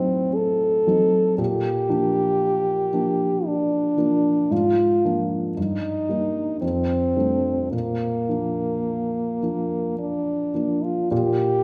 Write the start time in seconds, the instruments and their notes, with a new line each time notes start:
Already playing: grand piano A2 F#3 C4 D#4, french horn C4
0.35 french horn A4
0.87 grand piano F#3 C4 D#4
1.38 grand piano A#2, french horn G4
1.89 grand piano F3 A#3 D4
2.93 grand piano F3 A#3 D4
3.46 french horn D4
3.98 grand piano F3 A#3 D4
4.51 grand piano G#2, french horn F4
5.05 grand piano F3 A#3 D4
5.57 grand piano G2, french horn D#4
6.09 grand piano G3 A#3 D#4
6.61 grand piano F2, french horn C4
7.16 grand piano G3 A3 D4
7.72 grand piano A#2, french horn A#3
8.28 grand piano F3 A#3 D4
9.42 grand piano F3 A#3 D4
9.99 french horn D4
10.54 grand piano F3 A#3 D4
10.84 french horn F4
11.11 grand piano A#2, french horn G4